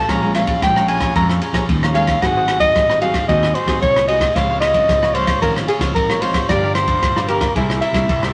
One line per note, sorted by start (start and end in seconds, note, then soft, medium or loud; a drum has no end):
0.00 0.11 A5 loud
0.08 0.54 A#1 loud
0.08 0.60 A#2 medium
0.08 0.18 G#3 medium
0.08 0.18 C#4 medium
0.08 0.18 F4 medium
0.08 0.21 G#4 medium
0.08 0.21 C#5 medium
0.08 0.21 F5 medium
0.08 0.35 A#5 loud
0.08 0.22 A#5 medium
0.08 kick medium
0.08 cross-stick medium
0.08 ride soft
0.22 0.32 G#3 medium
0.22 0.32 C#4 medium
0.22 0.32 F4 medium
0.22 0.31 G#4 medium
0.22 0.31 C#5 medium
0.22 0.31 F5 medium
0.22 0.32 A#5 medium
0.34 0.58 G#3 medium
0.34 0.58 C#4 medium
0.34 0.58 F4 medium
0.34 0.74 G#4 soft
0.34 0.74 C#5 medium
0.34 0.60 F5 medium
0.34 0.74 F5 medium
0.34 0.75 A#5 medium
0.34 cross-stick medium
0.34 ride soft
0.47 kick medium
0.47 ride medium
0.62 1.08 A#1 medium
0.62 1.13 F3 medium
0.62 0.70 G#3 medium
0.62 0.70 C#4 medium
0.62 0.71 F4 medium
0.62 0.87 G5 loud
0.62 kick medium
0.62 cross-stick medium
0.62 ride soft
0.76 1.12 G#3 medium
0.76 1.12 C#4 medium
0.76 1.12 F4 medium
0.76 0.87 C#5 soft
0.76 0.87 F5 soft
0.76 0.88 A#5 soft
0.76 cross-stick medium
0.87 1.00 G#4 medium
0.87 1.01 C#5 medium
0.87 1.00 F5 medium
0.87 1.14 G#5 loud
0.87 0.99 A#5 medium
0.87 ride soft
1.00 1.14 C#5 soft
1.00 1.14 F5 soft
1.00 1.14 A#5 soft
1.00 kick medium
1.00 cross-stick medium
1.00 ride soft
1.15 1.38 F2 loud
1.15 1.66 A#2 medium
1.15 1.50 G#3 medium
1.15 1.50 C#4 medium
1.15 1.51 F4 medium
1.15 1.40 G#4 medium
1.15 1.40 C#5 medium
1.15 1.41 F5 medium
1.15 1.28 A#5 medium
1.15 1.41 A#5 medium
1.15 kick medium
1.15 ride soft
1.29 cross-stick medium
1.41 1.52 G#4 medium
1.41 1.53 C#5 medium
1.41 1.53 F5 medium
1.41 1.53 A#5 medium
1.41 ride soft
1.53 1.65 A#1 medium
1.53 1.64 G#4 medium
1.53 1.64 C#5 medium
1.53 1.64 F5 medium
1.53 1.64 A#5 medium
1.53 kick medium
1.53 cross-stick medium
1.53 ride soft
1.69 2.14 D#2 medium
1.69 2.20 F3 medium
1.69 1.91 G#3 medium
1.69 1.92 C#4 medium
1.69 1.92 F4 medium
1.69 kick medium
1.69 ride soft
1.82 1.93 C#5 soft
1.82 1.94 F5 soft
1.82 1.94 A#5 soft
1.82 cross-stick medium
1.94 2.12 G#3 medium
1.94 2.13 C#4 soft
1.94 2.13 F4 medium
1.94 2.07 G#4 medium
1.94 2.07 C#5 medium
1.94 2.23 F5 loud
1.94 2.06 F5 medium
1.94 2.06 A#5 medium
1.94 ride soft
2.07 2.21 C#5 soft
2.07 2.20 F5 soft
2.07 2.20 A#5 soft
2.07 kick medium
2.07 cross-stick medium
2.07 ride soft
2.22 2.68 G#1 loud
2.22 2.73 G#2 medium
2.22 2.47 F#3 medium
2.22 2.48 C4 medium
2.22 2.48 D#4 medium
2.22 2.34 F#4 medium
2.22 2.35 G#4 medium
2.22 2.35 C5 medium
2.22 2.35 D#5 medium
2.22 2.60 F#5 loud
2.22 kick medium
2.22 cross-stick medium
2.22 ride soft
2.36 2.45 F#4 medium
2.36 2.45 G#4 medium
2.36 2.45 C5 medium
2.36 2.45 D#5 medium
2.48 2.87 F#4 medium
2.48 2.87 G#4 medium
2.48 2.88 C5 soft
2.48 2.88 D#5 medium
2.48 cross-stick medium
2.48 ride soft
2.60 2.97 F#3 medium
2.60 2.98 C4 medium
2.60 2.98 D#4 medium
2.60 2.98 D#5 loud
2.60 kick medium
2.60 ride soft
2.76 3.21 G#1 medium
2.76 3.26 D#3 medium
2.76 kick medium
2.76 cross-stick medium
2.76 ride soft
2.89 3.00 G#4 soft
2.89 3.01 C5 soft
2.89 3.01 D#5 soft
2.89 cross-stick medium
3.01 3.18 F#3 medium
3.01 3.18 C4 medium
3.01 3.18 D#4 medium
3.01 3.14 F#4 medium
3.01 3.13 G#4 medium
3.01 3.13 C5 medium
3.01 3.12 D#5 medium
3.01 3.27 F5 loud
3.01 ride soft
3.13 3.27 G#4 soft
3.13 3.27 C5 soft
3.13 3.27 D#5 soft
3.13 kick medium
3.13 cross-stick medium
3.13 ride soft
3.28 3.52 D#2 loud
3.28 3.80 G#2 medium
3.28 3.54 F#3 soft
3.28 3.54 C4 medium
3.28 3.54 D#4 medium
3.28 3.53 F#4 medium
3.28 3.54 G#4 medium
3.28 3.54 C5 medium
3.28 3.56 D#5 medium
3.28 3.55 D#5 medium
3.28 kick medium
3.28 ride soft
3.43 cross-stick medium
3.54 3.66 F#4 medium
3.54 3.66 G#4 soft
3.54 3.81 C5 medium
3.54 3.67 C5 medium
3.54 3.67 D#5 medium
3.54 ride soft
3.66 3.79 G#1 medium
3.66 4.04 F#3 medium
3.66 4.04 C4 medium
3.66 4.04 D#4 medium
3.66 3.77 F#4 medium
3.66 3.77 G#4 medium
3.66 3.77 C5 medium
3.66 3.77 D#5 medium
3.66 kick medium
3.66 cross-stick medium
3.66 ride soft
3.82 4.28 C2 medium
3.82 4.33 D#3 medium
3.82 4.07 C#5 loud
3.82 kick medium
3.82 ride soft
3.95 4.07 G#4 soft
3.95 4.07 C5 soft
3.95 4.08 D#5 soft
3.95 cross-stick medium
4.07 4.24 F#3 medium
4.07 4.24 C4 medium
4.07 4.25 D#4 medium
4.07 4.20 F#4 medium
4.07 4.20 G#4 medium
4.07 4.20 C5 medium
4.07 4.36 D#5 medium
4.07 4.19 D#5 medium
4.07 ride medium
4.20 4.34 G#4 soft
4.20 4.34 C5 soft
4.20 4.34 D#5 soft
4.20 kick medium
4.20 cross-stick medium
4.20 ride soft
4.35 4.81 C#2 loud
4.35 4.86 C#3 medium
4.35 4.61 F3 medium
4.35 4.61 G#3 medium
4.35 4.61 C4 medium
4.35 4.48 F4 medium
4.35 4.48 C5 medium
4.35 4.48 C#5 medium
4.35 4.60 F5 medium
4.35 4.48 F5 medium
4.35 kick medium
4.35 cross-stick medium
4.35 ride soft
4.49 4.58 F4 medium
4.49 4.58 C5 medium
4.49 4.58 C#5 medium
4.49 4.58 F5 medium
4.60 5.01 F4 soft
4.60 5.01 C5 medium
4.60 5.01 C#5 soft
4.60 5.16 D#5 medium
4.60 5.01 F5 medium
4.60 cross-stick medium
4.60 ride medium
4.74 5.11 F3 medium
4.74 5.11 G#3 medium
4.74 5.11 C4 medium
4.74 kick medium
4.74 ride soft
4.89 5.34 C#2 medium
4.89 5.40 G#2 medium
4.89 kick medium
4.89 cross-stick medium
4.89 ride soft
5.03 5.14 C5 soft
5.03 5.14 C#5 soft
5.03 5.15 F5 medium
5.03 cross-stick medium
5.14 5.31 F3 medium
5.14 5.31 G#3 medium
5.14 5.31 C4 medium
5.14 5.27 F4 medium
5.14 5.41 C5 medium
5.14 5.27 C5 medium
5.14 5.26 C#5 medium
5.14 5.25 F5 medium
5.14 ride medium
5.27 5.41 C5 soft
5.27 5.41 C#5 soft
5.27 5.40 F5 soft
5.27 kick medium
5.27 cross-stick medium
5.27 ride medium
5.41 5.65 G#1 loud
5.41 5.93 C#3 medium
5.41 5.67 F3 medium
5.41 5.67 G#3 medium
5.41 5.67 C4 medium
5.41 5.66 F4 medium
5.41 5.54 A#4 medium
5.41 5.67 C5 medium
5.41 5.67 C#5 medium
5.41 5.68 F5 medium
5.41 kick medium
5.41 ride soft
5.56 cross-stick medium
5.67 5.79 F4 medium
5.67 5.80 G#4 medium
5.67 5.80 C5 medium
5.67 5.80 C#5 soft
5.67 5.80 F5 medium
5.67 ride soft
5.79 5.92 C#2 medium
5.79 6.17 F3 medium
5.79 6.17 G#3 medium
5.79 6.18 C4 medium
5.79 5.90 F4 medium
5.79 5.91 C5 medium
5.79 5.91 C#5 medium
5.79 5.91 F5 medium
5.79 kick medium
5.79 cross-stick medium
5.79 ride soft
5.95 6.41 G#1 medium
5.95 6.46 G#2 medium
5.95 6.22 A#4 medium
5.95 kick medium
5.95 ride soft
6.09 6.20 C5 soft
6.09 6.21 C#5 soft
6.09 6.21 F5 medium
6.09 cross-stick medium
6.21 6.44 F3 medium
6.21 6.44 G#3 medium
6.21 6.44 C4 medium
6.21 6.34 F4 medium
6.21 6.48 C5 medium
6.21 6.34 C5 medium
6.21 6.34 C#5 medium
6.21 6.33 F5 medium
6.21 ride medium
6.34 6.48 C5 soft
6.34 6.48 C#5 soft
6.34 6.47 F5 soft
6.34 kick medium
6.34 cross-stick medium
6.34 ride soft
6.49 6.94 G1 loud
6.49 7.00 G2 medium
6.49 6.85 F3 medium
6.49 6.85 A#3 medium
6.49 6.85 D4 medium
6.49 6.61 G4 medium
6.49 6.62 A#4 medium
6.49 6.74 D5 medium
6.49 6.62 D5 medium
6.49 6.62 F5 medium
6.49 kick medium
6.49 cross-stick medium
6.49 ride soft
6.63 6.72 G4 medium
6.63 6.72 A#4 medium
6.63 6.72 D5 medium
6.63 6.72 F5 medium
6.75 7.14 G4 soft
6.75 7.15 A#4 medium
6.75 7.30 C5 medium
6.75 7.15 D5 medium
6.75 7.15 F5 medium
6.75 cross-stick medium
6.75 ride soft
6.87 7.24 F3 medium
6.87 7.24 A#3 medium
6.87 7.24 D4 medium
6.87 kick medium
6.87 ride medium
7.02 7.48 G1 medium
7.02 7.53 D3 medium
7.02 kick medium
7.02 cross-stick medium
7.02 ride soft
7.16 7.28 A#4 soft
7.16 7.28 D5 soft
7.16 7.28 F5 medium
7.16 cross-stick medium
7.28 7.44 F3 medium
7.28 7.44 A#3 medium
7.28 7.44 D4 medium
7.28 7.41 G4 medium
7.28 7.54 A#4 medium
7.28 7.41 A#4 medium
7.28 7.41 D5 medium
7.28 7.40 F5 medium
7.28 ride soft
7.41 7.55 A#4 soft
7.41 7.55 D5 soft
7.41 7.54 F5 soft
7.41 kick medium
7.41 cross-stick medium
7.41 ride soft
7.55 7.78 C2 loud
7.55 8.07 C3 medium
7.55 7.92 G3 medium
7.55 7.92 A#3 medium
7.55 7.81 E4 medium
7.55 7.92 E4 medium
7.55 7.80 G#4 medium
7.55 7.81 A#4 medium
7.55 7.82 C5 medium
7.55 7.82 E5 medium
7.55 kick medium
7.55 ride soft
7.70 cross-stick medium
7.81 7.93 E4 soft
7.81 7.93 A#4 medium
7.81 7.93 C5 medium
7.81 8.31 E5 medium
7.81 7.94 E5 medium
7.81 ride soft
7.93 8.05 C2 medium
7.93 8.30 G3 medium
7.93 8.31 A#3 medium
7.93 8.04 E4 medium
7.93 8.31 E4 medium
7.93 8.04 A#4 medium
7.93 8.04 C5 medium
7.93 8.04 E5 medium
7.93 kick medium
7.93 cross-stick medium
7.93 ride soft
8.09 8.33 C2 medium
8.09 8.33 G2 medium
8.09 kick medium
8.09 ride soft
8.23 8.33 A#4 soft
8.23 8.33 C5 soft
8.23 8.33 E5 soft
8.23 cross-stick medium